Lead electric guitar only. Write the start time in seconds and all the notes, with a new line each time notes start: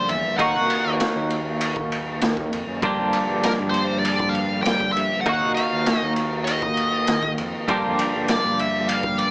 0.09 E5
0.38 F#5
3.44 A#4
3.70 C5
3.99 D5
4.29 F5
4.62 G5
4.92 E5
5.21 F#5
5.55 F5
5.99 D#5
6.45 D#5
8.30 D5
8.60 E5
8.89 F5
9.18 D5